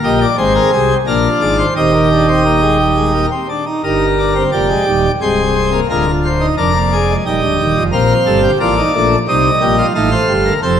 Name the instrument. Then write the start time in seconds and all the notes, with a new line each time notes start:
pipe organ
Already playing: A#3
0.04 A#1 A#2 G4 D#5
0.21 D5
0.38 G#1 G#2 C4 G#4 C5
0.55 A#4
0.73 C2 C3 G#4
1.07 A#1 A#2 D4 F4 A#4
1.41 G#1 G#2 D5
1.58 C5
1.76 D#1 D#2 C4 G4 D#5
1.94 A#3
2.11 D4
2.28 C4
2.45 A#3
2.62 G#3
2.79 G3
2.96 G#3
3.14 A#3
3.31 C4
3.49 D4
3.66 D#4
3.84 G1 G2 D#4 A#4
4.18 D4
4.35 C4
4.52 F1 F2 A#3 G4 D5
4.69 G#3
4.86 D#1 D#2 G3
5.21 C1 C2 G#3 G#4 C5
5.55 C4
5.72 A#3
5.90 D1 D2 G#3 F4 A#4
6.08 F4
6.25 C5
6.41 D#4
6.57 F1 F2 D4 A#4 D5
6.75 A#3
6.92 G#4
7.09 G#3
7.26 D#1 D#2 G3 G4 D#5
7.43 D1 D2
7.60 D#1 D#2
7.77 F1 F2
7.92 A#1 A#2 C4 A#4 F5
8.26 G1 G2 A4
8.43 G4
8.60 A1 A2 A#3 F4 D5
8.78 D#4
8.95 A#1 A#2 A3 D4
9.28 C2 C3 G3 D#4 D#5
9.61 A#1 A#2 G4
9.78 F4
9.95 A1 A2 A3 D#4 F5
10.11 C5
10.28 G1 G2
10.45 A#4
10.62 F1 F2 C4 A4 C5